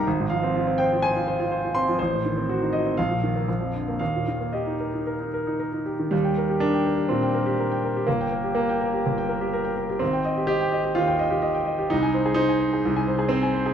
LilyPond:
\new Staff \with { instrumentName = "Grand piano" } { \time 4/4 \key ees \major \tempo 4 = 124 << { aes,,16 aes,16 f16 c'16 f'16 c'16 c''16 f'16 c''16 f'16 c''16 f'16 c''16 f'16 c'16 f16 | a,,16 a,16 ees16 c'16 fis'16 ees'16 fis'16 c'16 bes,,16 bes,16 ees16 bes16 bes,,16 f,16 d16 bes16 | ees,16 bes,16 ees16 bes16 g'16 ees'16 bes'16 ees'16 bes'16 ees'16 bes'16 ees'16 bes'16 ees'16 g'16 ees16 | ees,16 g''16 bes'16 g'16 bes'16 g''16 bes'16 g'16 bes,16 g''16 bes'16 g'16 bes'16 g''16 bes'16 g'16 |
g,,16 g''16 bes'16 g'16 bes'16 g''16 bes'16 g'16 g,,16 g''16 bes'16 g'16 bes'16 g''16 bes'16 g'16 | aes,,16 g''16 ees''16 g'16 ees''16 g''16 ees''16 g'16 ees,16 g''16 ees''16 g'16 ees''16 g''16 ees''16 g'16 | c,16 aes''16 c''16 aes'16 c''16 aes''16 c''16 aes'16 c,16 aes''16 c''16 aes'16 c''16 aes''16 c''16 aes'16 | } \\ { r8 f''4 g''8 aes''4. c'''8 | c''4. ees''8 f''2 | f''4 ees''2 r4 | g4 d'4 c'2 |
bes4 bes2~ bes8 r8 | c'4 g'4 f'2 | ees'4 ees'2 c'4 | } >> }